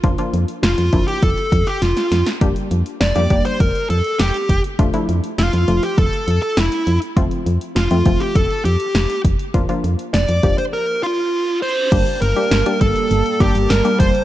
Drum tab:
CC |----------------|----------------|----------------|----------------|
HH |xxxxxxxxxxxxxxxx|xxxxxxxxxxxxxxxx|xxxxxxxxxxxxxxxx|xxxxxxxxxxxxxxxx|
SD |----o-------oooo|----o-------o---|----o-------o---|----o-------o---|
BD |o-----o-o-o-----|o-----o-o-----o-|o-------o-------|o-----o-o-----o-|

CC |----------------|x---------------|
HH |xxxxxxxx--------|xxxxxxxxxxxxxxxx|
SD |----o-----------|----o-------o---|
BD |o-----o---------|o-----o---o---o-|